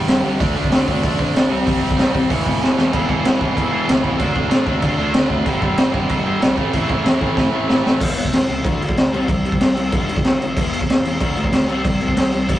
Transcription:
0.08 picked electric bass G1, overdriven electric guitar G2 D3 G3, snare, open hi-hat
0.25 picked electric bass G1, overdriven electric guitar G2 D3 G3
0.40 picked electric bass D2, overdriven electric guitar D3 A3 D4, kick, open hi-hat
0.56 picked electric bass D2, overdriven electric guitar D3 A3 D4
0.64 kick
0.71 picked electric bass D2, overdriven electric guitar D3 A3 D4, snare, open hi-hat
0.88 picked electric bass D2, overdriven electric guitar D3 A3 D4, kick
1.03 picked electric bass F#2, overdriven electric guitar D3 A3 D4, kick, open hi-hat
1.19 picked electric bass C3, overdriven electric guitar D3 A3 D4, kick
1.35 picked electric bass B1, overdriven electric guitar D3 A3 D4, snare, open hi-hat
1.50 picked electric bass C2, overdriven electric guitar C3 G3 C4
1.66 picked electric bass C2, overdriven electric guitar C3 G3 C4, kick, open hi-hat
1.81 picked electric bass C2, overdriven electric guitar C3 G3 C4
1.91 kick
1.98 picked electric bass C2, overdriven electric guitar C3 G3 C4, snare, open hi-hat
2.12 picked electric bass C2, overdriven electric guitar C3 G3 C4, kick
2.30 picked electric bass E1, overdriven electric guitar E2 B2 E3, kick, open hi-hat
2.46 picked electric bass D2, overdriven electric guitar E2 B2 E3, kick
2.62 picked electric bass E1, overdriven electric guitar E2 B2 E3, snare
2.77 picked electric bass E1, overdriven electric guitar E2 B2 E3, snare
2.93 picked electric bass E1, overdriven electric guitar E2 B2 E3, kick, crash
3.09 picked electric bass E1, overdriven electric guitar E2 B2 E3, kick
3.25 picked electric bass E1, overdriven electric guitar E2 B2 E3, snare, crash
3.40 picked electric bass E1, overdriven electric guitar E2 B2 E3, kick
3.56 picked electric bass E1, overdriven electric guitar E2 B2 E3, kick, crash
3.72 overdriven electric guitar E2 B2 E3
3.87 picked electric bass D2, overdriven electric guitar E2 B2 E3, snare, crash
4.04 picked electric bass C2, overdriven electric guitar E2 B2 E3, kick
4.18 picked electric bass D2, overdriven electric guitar D3 A3 D4, kick, crash
4.35 picked electric bass D2, overdriven electric guitar D3 A3 D4, kick
4.50 picked electric bass A2, overdriven electric guitar D3 A3 D4, snare, crash
4.67 picked electric bass D2, overdriven electric guitar D3 A3 D4, kick
4.82 picked electric bass D2, overdriven electric guitar D3 A3 D4, kick, crash
4.98 picked electric bass D2, overdriven electric guitar D3 A3 D4
5.14 picked electric bass D2, overdriven electric guitar D3 A3 D4, snare, crash
5.29 picked electric bass D2, overdriven electric guitar D3 A3 D4, kick
5.33 overdriven electric guitar D3 A3
5.46 picked electric bass G1, overdriven electric guitar G2 D3 G3, kick, crash
5.62 picked electric bass G1, overdriven electric guitar G2 D3 G3, kick
5.78 picked electric bass G1, overdriven electric guitar G2 D3 G3, snare, crash
5.92 picked electric bass G1, overdriven electric guitar G2 D3 G3, kick
6.09 picked electric bass G1, overdriven electric guitar G2 D3 G3, kick, crash
6.25 overdriven electric guitar G2 D3 G3
6.40 overdriven electric guitar G2 D3 G3, snare, crash
6.45 picked electric bass B1
6.58 picked electric bass A1, overdriven electric guitar A2 E3 A3, kick
6.73 picked electric bass A1, overdriven electric guitar A2 E3 A3, kick, crash
6.90 picked electric bass A1, overdriven electric guitar A2 E3 A3, kick
7.04 picked electric bass E2, overdriven electric guitar A2 E3 A3, snare, crash
7.19 picked electric bass A1, overdriven electric guitar A2 E3 A3, kick
7.37 picked electric bass A1, overdriven electric guitar A2 E3 A3, kick, snare
7.53 picked electric bass A1, overdriven electric guitar A2 E3 A3
7.69 picked electric bass A1, overdriven electric guitar A2 E3 A3, snare
7.84 picked electric bass A1, overdriven electric guitar A2 E3 A3, snare
8.00 picked electric bass E1, overdriven electric guitar E2 B2 E3, kick, crash
8.17 overdriven electric guitar E2 B2, crash
8.25 kick
8.33 picked electric bass E1, overdriven electric guitar E2 B2, snare, crash
8.49 picked electric bass C#2, overdriven electric guitar E2 B2, crash
8.64 picked electric bass D2, overdriven electric guitar D3 A3 D4, kick, crash
8.80 picked electric bass D2, overdriven electric guitar D3 A3, crash
8.89 kick
8.97 picked electric bass D2, overdriven electric guitar D3 A3, snare, crash
9.12 picked electric bass C2, overdriven electric guitar C3 G3 C4, crash
9.28 picked electric bass C2, overdriven electric guitar C3 G3, kick, crash
9.45 overdriven electric guitar C3 G3, crash
9.52 kick
9.61 picked electric bass C2, overdriven electric guitar C3 G3, snare, crash
9.76 picked electric bass C2, overdriven electric guitar C3 G3, crash
9.92 picked electric bass B1, overdriven electric guitar G2 D3 G3, kick, crash
10.09 picked electric bass B1, overdriven electric guitar G2 D3, crash
10.16 kick
10.24 picked electric bass B1, overdriven electric guitar G2 D3, snare, crash
10.41 picked electric bass B1, overdriven electric guitar G2 D3, crash
10.57 picked electric bass E1, overdriven electric guitar E2 B2 E3, kick, crash
10.73 overdriven electric guitar E2 B2, crash
10.81 kick
10.89 picked electric bass E1, overdriven electric guitar E2 B2, snare, crash
11.05 overdriven electric guitar E2 B2, picked electric bass E2, crash
11.20 picked electric bass D2, overdriven electric guitar D3 A3 D4, kick, crash
11.36 picked electric bass D2, overdriven electric guitar D3 A3, crash
11.44 kick
11.52 picked electric bass D2, overdriven electric guitar D3 A3, snare, crash
11.67 picked electric bass C2, overdriven electric guitar C3 G3 C4, crash
11.85 picked electric bass C2, overdriven electric guitar C3 G3, kick, crash
12.00 overdriven electric guitar C3 G3, crash
12.08 kick
12.15 picked electric bass C2, overdriven electric guitar C3 G3, snare, crash
12.32 picked electric bass C2, overdriven electric guitar C3 G3, crash
12.48 picked electric bass B1, overdriven electric guitar G2 D3 G3, kick, crash

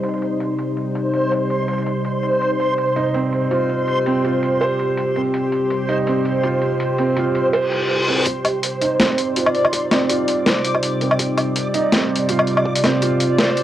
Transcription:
Already playing: synth drone C3 G3 D#4, synth texture C5
0.03 closed hi-hat
0.09 closed hi-hat
0.14 closed hi-hat
0.18 closed hi-hat
0.22 closed hi-hat
0.40 closed hi-hat
0.58 closed hi-hat
0.77 closed hi-hat
0.95 closed hi-hat
1.13 closed hi-hat
1.32 closed hi-hat
1.50 closed hi-hat
1.68 closed hi-hat
1.73 closed hi-hat
1.78 closed hi-hat
1.82 closed hi-hat
1.86 closed hi-hat
2.05 closed hi-hat
2.23 closed hi-hat
2.41 synth drone G4, closed hi-hat
2.60 closed hi-hat
2.78 closed hi-hat
2.96 felt piano D#4, closed hi-hat
3.14 felt piano C4, closed hi-hat
3.33 closed hi-hat
3.51 felt piano F4, closed hi-hat
3.69 closed hi-hat
3.88 closed hi-hat
4.06 felt piano C4, closed hi-hat
4.24 felt piano F4, closed hi-hat
4.43 closed hi-hat
4.61 felt piano C5, closed hi-hat
4.79 closed hi-hat
4.97 closed hi-hat
5.16 felt piano C4, closed hi-hat
5.34 closed hi-hat
5.52 closed hi-hat
5.70 closed hi-hat
5.89 felt piano D#4, closed hi-hat
6.07 felt piano C4, closed hi-hat
6.25 closed hi-hat
6.44 felt piano F4, closed hi-hat
6.62 closed hi-hat
6.80 closed hi-hat
6.98 felt piano C4, closed hi-hat
7.17 felt piano F4, closed hi-hat
7.35 closed hi-hat
7.53 felt piano C5, closed hi-hat, reverse cymbal
7.72 closed hi-hat
7.90 closed hi-hat
8.08 felt piano C4, closed hi-hat
8.26 synth drone C3 G3 D#4, synth texture D5, kick, closed hi-hat
8.45 kick, closed hi-hat, low woodblock
8.63 closed hi-hat
8.81 felt piano D#4, closed hi-hat
9.00 felt piano C4, snare, closed hi-hat
9.18 closed hi-hat
9.36 felt piano F4, closed hi-hat
9.46 low woodblock
9.55 closed hi-hat
9.65 low woodblock
9.73 kick, closed hi-hat
9.91 felt piano C4, snare, closed hi-hat, low woodblock
10.09 felt piano F4, closed hi-hat
10.28 closed hi-hat
10.46 felt piano C5, snare, closed hi-hat
10.64 closed hi-hat
10.74 kick, low woodblock
10.83 closed hi-hat
11.01 felt piano C4, closed hi-hat
11.11 low woodblock
11.19 synth drone F4, kick, closed hi-hat
11.37 kick, closed hi-hat, low woodblock
11.56 closed hi-hat
11.74 felt piano D#4, closed hi-hat
11.92 felt piano C4, snare, closed hi-hat
12.16 closed hi-hat
12.29 felt piano F4, closed hi-hat
12.39 low woodblock
12.47 closed hi-hat
12.57 low woodblock
12.66 kick
12.76 closed hi-hat
12.84 felt piano C4, snare, closed hi-hat, low woodblock
13.02 felt piano F4, closed hi-hat
13.20 closed hi-hat
13.38 felt piano C5, snare, closed hi-hat
13.57 closed hi-hat

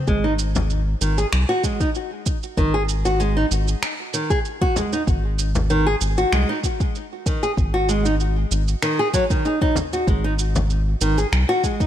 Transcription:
0.07 analog synth bass G#1, nylon-string guitar G#3, kick, shaker
0.24 nylon-string guitar D#4
0.39 shaker
0.55 frame drum, shaker
0.70 shaker
1.01 analog synth bass G#1, nylon-string guitar D#3, shaker
1.18 nylon-string guitar G#4, shaker
1.33 analog synth bass C2, finger snap, shaker
1.49 nylon-string guitar F#4
1.64 nylon-string guitar G#3, kick, shaker
1.80 nylon-string guitar D#4, kick, shaker
1.95 shaker
2.26 kick, shaker
2.43 shaker
2.57 analog synth bass G#1, nylon-string guitar D#3, kick, shaker
2.74 nylon-string guitar G#4
2.89 shaker
3.05 nylon-string guitar F#4, shaker
3.20 nylon-string guitar G#3, shaker
3.37 nylon-string guitar D#4
3.51 analog synth bass G#1, shaker
3.68 shaker
3.83 finger snap, shaker
4.14 nylon-string guitar D#3, shaker
4.30 nylon-string guitar G#4, kick, shaker
4.45 shaker
4.62 nylon-string guitar F#4, kick
4.76 nylon-string guitar G#3, frame drum, shaker
4.93 nylon-string guitar D#4, shaker
5.07 analog synth bass G#1, kick, shaker
5.39 shaker
5.55 frame drum, shaker
5.70 nylon-string guitar D#3, shaker
5.87 nylon-string guitar G#4
6.01 analog synth bass G#1, shaker
6.18 nylon-string guitar F#4, shaker
6.32 analog synth bass C2, nylon-string guitar G#3, finger snap, shaker
6.49 nylon-string guitar D#4
6.64 kick, shaker
6.80 kick, shaker
6.95 shaker
7.26 nylon-string guitar D#3, kick, shaker
7.43 nylon-string guitar G#4, shaker
7.57 analog synth bass G#1, kick, shaker
7.74 nylon-string guitar F#4
7.89 nylon-string guitar G#3, shaker
8.05 nylon-string guitar D#4, shaker
8.20 shaker
8.51 analog synth bass G#1, shaker
8.68 shaker
8.82 nylon-string guitar D#3, finger snap, shaker
8.99 nylon-string guitar G#4
9.14 nylon-string guitar F#3, kick, shaker
9.30 nylon-string guitar D#3, kick, shaker
9.45 nylon-string guitar D#4, shaker
9.62 nylon-string guitar D#4, kick
9.76 frame drum, shaker
9.93 nylon-string guitar F#4, shaker
10.07 analog synth bass G#1, nylon-string guitar G#3, kick, shaker
10.24 nylon-string guitar D#4
10.39 shaker
10.56 frame drum, shaker
10.70 shaker
11.01 analog synth bass G#1, nylon-string guitar D#3, shaker
11.18 nylon-string guitar G#4, shaker
11.32 analog synth bass C2, finger snap, shaker
11.49 nylon-string guitar F#4
11.64 nylon-string guitar G#3, kick, shaker
11.80 nylon-string guitar D#4, kick, shaker

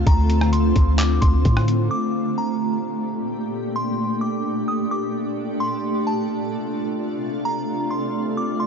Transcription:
Already playing: ambient pad D3 A3 C4 F4
0.07 808-style bass D2, synth bell A#5, kick, closed hi-hat
0.30 closed hi-hat
0.41 cross-stick
0.53 synth bell C6, closed hi-hat
0.76 808-style bass D2, kick, closed hi-hat
0.99 synth bell D6, clap, closed hi-hat
1.21 808-style bass D2, synth bell C6, kick, closed hi-hat
1.45 808-style bass A2, kick, closed hi-hat
1.57 cross-stick
1.68 closed hi-hat
1.91 ambient pad A#2 A3 D4 G4, synth bell D6
2.38 synth bell A#5
3.76 synth bell C6
4.21 synth bell D6
4.68 synth bell D#6
4.91 synth bell D6
5.60 ambient pad C3 F4, synth bell C6
6.07 synth bell A5
7.45 synth bell A#5
7.91 synth bell C6
8.37 synth bell D6
8.60 synth bell C6

